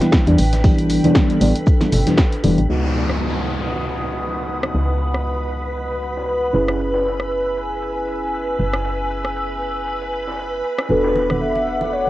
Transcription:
0.00 0.24 E3 medium
0.00 0.24 G3 medium
0.00 0.24 B3 medium
0.00 2.65 D4 medium
0.00 0.24 E4 medium
0.00 0.62 B4 medium
0.00 2.68 B4 medium
0.00 2.65 G5 medium
0.00 2.68 B5 medium
0.00 snare soft
0.00 closed hi-hat medium
0.12 kick loud
0.12 snare loud
0.12 shaker medium
0.27 0.36 E2 medium
0.27 0.35 E3 loud
0.27 0.36 G3 medium
0.27 0.36 B3 medium
0.27 0.36 D4 loud
0.27 closed hi-hat medium
0.27 muted conga medium
0.38 0.99 A1 medium
0.38 open hi-hat medium
0.38 high conga medium
0.38 shaker medium
0.53 snare soft
0.53 closed hi-hat medium
0.53 muted conga medium
0.64 1.01 E3 medium
0.64 1.01 G3 medium
0.64 1.01 B3 medium
0.64 1.01 D4 medium
0.64 2.67 A4 medium
0.64 kick loud
0.64 open hi-hat medium
0.79 closed hi-hat medium
0.90 open hi-hat medium
0.90 muted conga medium
0.90 shaker medium
1.04 1.38 E3 medium
1.04 1.38 G3 medium
1.04 1.39 B3 medium
1.04 1.39 D4 loud
1.04 closed hi-hat medium
1.04 high conga medium
1.04 low conga medium
1.15 kick loud
1.15 snare loud
1.15 muted conga medium
1.15 shaker medium
1.30 closed hi-hat soft
1.41 1.52 A1 loud
1.41 1.52 E3 loud
1.41 1.52 G3 medium
1.41 1.52 B3 medium
1.41 1.52 D4 loud
1.41 open hi-hat medium
1.41 shaker medium
1.55 closed hi-hat medium
1.55 muted conga medium
1.67 kick loud
1.67 shaker medium
1.81 1.89 E3 medium
1.81 1.90 G3 medium
1.81 1.90 B3 medium
1.81 1.90 D4 medium
1.81 snare soft
1.81 closed hi-hat soft
1.81 muted conga medium
1.81 high conga medium
1.92 2.04 G1 medium
1.92 open hi-hat loud
1.92 low conga loud
1.92 shaker medium
2.06 2.15 E3 medium
2.06 2.15 G3 medium
2.06 2.15 B3 medium
2.06 2.15 D4 medium
2.06 snare soft
2.06 closed hi-hat medium
2.06 low conga medium
2.18 kick loud
2.18 snare loud
2.18 shaker medium
2.32 closed hi-hat medium
2.43 2.55 E1 loud
2.43 2.60 E3 loud
2.43 2.60 G3 medium
2.43 2.60 B3 medium
2.43 2.61 D4 loud
2.43 open hi-hat medium
2.43 muted conga medium
2.43 high conga medium
2.58 2.67 A1 medium
2.58 closed hi-hat medium
2.68 4.72 C#2 medium
2.68 6.51 G#3 medium
2.68 6.51 B3 medium
2.68 6.51 D#4 medium
2.68 6.52 F#4 medium
2.68 10.86 B4 medium
2.68 12.10 B4 medium
2.68 6.50 F#5 medium
2.68 12.10 B5 medium
2.68 6.50 D#6 medium
2.68 downlifter medium
2.68 shaker medium
2.84 snare medium
2.95 snare soft
2.95 shaker medium
3.09 cross-stick medium
3.21 shaker medium
3.35 closed hi-hat soft
3.46 shaker medium
3.72 shaker medium
3.98 shaker medium
4.23 shaker medium
4.49 shaker medium
4.63 cross-stick medium
4.63 snare soft
4.74 6.52 C#2 medium
4.74 open hi-hat medium
5.00 shaker medium
5.14 cross-stick medium
5.26 shaker medium
5.51 shaker medium
5.77 shaker medium
5.91 closed hi-hat soft
6.03 shaker medium
6.17 snare soft
6.28 shaker medium
6.53 8.57 F#1 medium
6.53 10.61 C#4 medium
6.53 10.61 E4 medium
6.53 10.62 G#4 medium
6.53 10.62 B4 medium
6.53 10.86 G#5 medium
6.53 10.86 E6 medium
6.53 shaker medium
6.68 cross-stick medium
6.68 snare soft
6.80 shaker medium
6.94 snare medium
7.05 snare soft
7.05 shaker medium
7.20 cross-stick medium
7.31 shaker medium
7.45 closed hi-hat soft
7.57 shaker medium
7.82 shaker medium
8.08 shaker medium
8.34 shaker medium
8.59 10.62 F#1 medium
8.59 shaker medium
8.73 cross-stick medium
8.73 snare soft
8.85 open hi-hat medium
9.10 shaker medium
9.25 cross-stick medium
9.36 shaker medium
9.62 shaker medium
9.87 shaker medium
10.02 closed hi-hat soft
10.13 shaker medium
10.27 snare soft
10.39 shaker medium
10.64 shaker medium
10.79 cross-stick medium
10.79 snare soft
10.89 12.10 E1 medium
10.89 12.10 B3 medium
10.89 12.10 D4 medium
10.89 12.10 F#4 medium
10.89 12.10 A4 medium
10.89 11.38 B4 loud
10.89 12.10 F#5 medium
10.89 12.10 D6 medium
10.89 muted conga soft
10.89 shaker medium
11.04 snare medium
11.15 snare soft
11.15 muted conga medium
11.15 shaker medium
11.30 cross-stick medium
11.30 high conga medium
11.30 low conga medium
11.41 11.94 E5 loud
11.41 shaker medium
11.55 closed hi-hat soft
11.55 muted conga medium
11.67 shaker medium
11.81 muted conga medium
11.92 12.10 C#5 loud
11.92 shaker medium

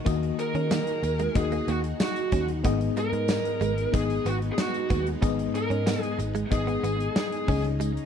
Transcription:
0.00 2.60 D#3 medium
0.00 0.05 A#3 medium
0.00 0.06 D#4 medium
0.00 8.06 D#4 medium
0.00 0.06 F#4 medium
0.00 2.60 F#4 medium
0.00 0.06 D#5 medium
0.05 0.31 D#2 loud
0.05 0.99 D#3 medium
0.05 1.09 A#3 medium
0.05 1.09 D#4 medium
0.05 0.17 D#4 medium
0.05 1.09 F#4 medium
0.05 2.62 G#4 medium
0.05 1.09 D#5 medium
0.05 kick loud
0.05 closed hi-hat medium
0.05 tambourine medium
0.23 closed hi-hat soft
0.39 1.36 A#4 loud
0.39 muted clean electric guitar stroke soft
0.39 closed hi-hat medium
0.39 tambourine medium
0.55 0.79 D#3 medium
0.55 0.66 C#4 medium
0.55 closed hi-hat soft
0.71 0.82 A#3 medium
0.71 snare loud
0.71 tambourine loud
0.71 tambourine medium
0.87 closed hi-hat medium
1.03 1.27 D#2 medium
1.03 muted clean electric guitar stroke soft
1.03 closed hi-hat medium
1.03 tambourine medium
1.19 1.31 G#3 medium
1.19 closed hi-hat medium
1.19 tambourine soft
1.35 1.59 D#2 loud
1.35 2.38 A#3 medium
1.35 2.38 D#4 medium
1.35 2.39 F#4 medium
1.35 1.69 G#4 medium
1.35 2.39 D#5 medium
1.35 muted clean electric guitar stroke soft
1.35 kick medium
1.35 closed hi-hat medium
1.35 tambourine soft
1.52 1.63 A#3 medium
1.52 closed hi-hat soft
1.52 tambourine soft
1.68 1.92 D#2 medium
1.68 1.79 A#3 medium
1.68 1.77 F#4 medium
1.68 closed hi-hat medium
1.68 tambourine medium
1.84 closed hi-hat medium
2.00 2.46 F#4 medium
2.00 snare loud
2.00 tambourine medium
2.16 closed hi-hat medium
2.32 2.66 D#2 medium
2.32 2.43 C#4 medium
2.32 kick medium
2.32 closed hi-hat medium
2.32 tambourine medium
2.48 closed hi-hat soft
2.64 2.89 G#1 loud
2.64 3.57 G#2 medium
2.64 7.44 G#3 medium
2.64 3.67 B3 medium
2.64 7.44 B3 medium
2.64 2.76 B3 medium
2.64 3.67 D#4 medium
2.64 3.67 G#4 medium
2.64 3.68 D#5 loud
2.64 kick loud
2.64 closed hi-hat medium
2.64 tambourine medium
2.81 closed hi-hat soft
2.96 3.08 G#3 medium
2.96 3.94 A#4 loud
2.96 closed hi-hat medium
2.96 tambourine soft
3.13 3.37 G#2 medium
3.13 muted clean electric guitar stroke soft
3.13 closed hi-hat medium
3.28 snare loud
3.28 tambourine loud
3.28 tambourine medium
3.45 closed hi-hat medium
3.61 3.85 G#1 medium
3.61 3.72 G#3 medium
3.61 closed hi-hat medium
3.61 tambourine medium
3.78 closed hi-hat medium
3.92 4.18 G#1 medium
3.92 4.96 B3 medium
3.92 4.96 D#4 medium
3.92 4.96 G#4 medium
3.92 4.27 G#4 loud
3.92 4.97 D#5 medium
3.92 kick medium
3.92 closed hi-hat medium
3.92 tambourine soft
4.10 closed hi-hat soft
4.25 4.50 G#1 medium
4.25 4.37 B3 medium
4.25 4.34 F#4 medium
4.25 closed hi-hat medium
4.25 tambourine medium
4.42 closed hi-hat soft
4.52 4.59 G#4 medium
4.58 5.04 F#4 medium
4.58 snare loud
4.58 tambourine medium
4.74 closed hi-hat medium
4.90 5.14 D#2 medium
4.90 5.01 B3 medium
4.90 kick medium
4.90 closed hi-hat medium
4.90 tambourine medium
5.07 closed hi-hat soft
5.21 5.47 G#1 loud
5.21 6.15 G#2 medium
5.21 6.25 B3 medium
5.21 6.25 D#4 medium
5.21 5.33 D#4 medium
5.21 6.25 G#4 medium
5.21 6.26 D#5 loud
5.21 kick loud
5.21 closed hi-hat medium
5.21 tambourine medium
5.39 closed hi-hat medium
5.54 6.02 A#4 loud
5.54 muted clean electric guitar stroke soft
5.54 closed hi-hat medium
5.54 tambourine soft
5.70 5.95 G#2 medium
5.70 5.82 C#4 medium
5.70 closed hi-hat soft
5.70 tambourine soft
5.86 5.98 B3 medium
5.86 snare loud
5.86 tambourine loud
5.86 tambourine medium
6.02 6.16 G#4 loud
6.02 closed hi-hat medium
6.19 6.43 G#1 loud
6.19 muted clean electric guitar stroke soft
6.19 closed hi-hat medium
6.19 tambourine medium
6.35 6.46 G#3 medium
6.35 closed hi-hat medium
6.51 6.76 G#1 loud
6.51 7.48 B3 medium
6.51 7.47 D#4 medium
6.51 7.47 G#4 medium
6.51 7.15 G#4 loud
6.51 7.48 D#5 medium
6.51 muted clean electric guitar stroke soft
6.51 kick medium
6.51 closed hi-hat medium
6.51 tambourine soft
6.67 6.78 B3 medium
6.67 closed hi-hat soft
6.83 7.08 G#1 medium
6.83 6.95 B3 medium
6.83 closed hi-hat medium
6.83 tambourine medium
7.00 closed hi-hat medium
7.16 7.61 G#4 loud
7.16 snare loud
7.16 tambourine medium
7.32 closed hi-hat medium
7.47 7.97 C#2 medium
7.47 8.06 C#3 medium
7.47 8.06 C#4 medium
7.47 7.59 C#4 medium
7.47 8.06 D#4 medium
7.47 8.06 G#4 medium
7.47 8.06 D#5 medium
7.47 kick loud
7.47 open hi-hat medium
7.47 tambourine soft
7.64 closed hi-hat soft
7.80 7.91 G#3 medium
7.80 closed hi-hat medium
7.80 tambourine medium
7.97 closed hi-hat soft

